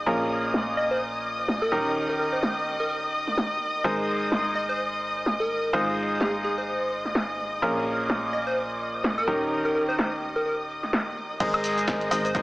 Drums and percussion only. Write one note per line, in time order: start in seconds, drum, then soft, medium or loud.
0.54 snare loud
1.48 snare loud
2.43 snare loud
3.27 snare soft
3.37 snare loud
4.32 snare medium
5.26 snare loud
6.21 snare loud
6.45 cabasa medium
6.92 cabasa medium
7.05 snare soft
7.05 cabasa soft
7.15 snare loud
7.15 cabasa soft
7.39 cabasa medium
7.86 cabasa medium
8.00 cabasa soft
8.10 snare loud
8.48 cabasa soft
8.57 cabasa soft
8.81 cabasa medium
8.95 cabasa soft
9.04 snare loud
9.04 cabasa soft
9.28 cabasa medium
9.42 cabasa soft
9.52 cabasa soft
9.76 cabasa medium
9.89 cabasa soft
9.99 snare loud
9.99 cabasa soft
10.23 cabasa medium
10.37 cabasa soft
10.47 cabasa soft
10.70 cabasa medium
10.83 snare soft
10.83 cabasa soft
10.93 snare loud
10.93 cabasa soft
11.17 cabasa medium
11.31 cabasa soft
11.40 kick loud
11.40 closed hi-hat medium
11.40 crash medium
11.40 cabasa soft
11.54 closed hi-hat soft
11.54 high woodblock medium
11.64 closed hi-hat medium
11.64 open hi-hat loud
11.64 cabasa medium
11.78 closed hi-hat soft
11.78 cabasa soft
11.88 kick loud
11.88 snare loud
11.88 closed hi-hat medium
11.88 cabasa soft
12.01 closed hi-hat soft
12.11 closed hi-hat medium
12.11 open hi-hat loud
12.11 cabasa medium
12.25 closed hi-hat soft
12.25 cabasa soft
12.35 kick loud
12.35 closed hi-hat medium
12.35 cabasa soft